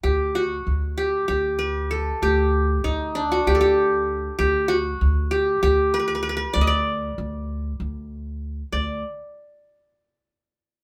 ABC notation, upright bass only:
X:1
M:7/8
L:1/8
Q:1/4=97
K:none
V:1 name="Upright bass" clef=bass
D,,2 D,,2 D,,3 | D,,2 D,,2 D,,3 | D,,2 D,,2 D,,3 | D,,2 D,,2 D,,3 |
D,, z6 |]